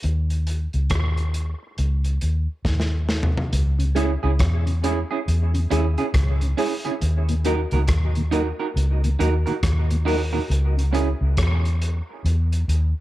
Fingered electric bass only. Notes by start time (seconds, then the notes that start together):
0.04 D#2
0.74 C#2
0.91 D#2
1.79 C#2
2.22 D#2
2.65 D#2
3.53 C#2
4.24 C#2
4.40 E2
5.28 E2
5.71 D#2
6.14 C#2
7.02 D#2
7.72 C#2
7.88 D#2
8.76 C#2
9.20 D#2
9.63 D#2
10.50 C#2
11.21 C#2
11.38 E2
12.25 E2
12.68 D#2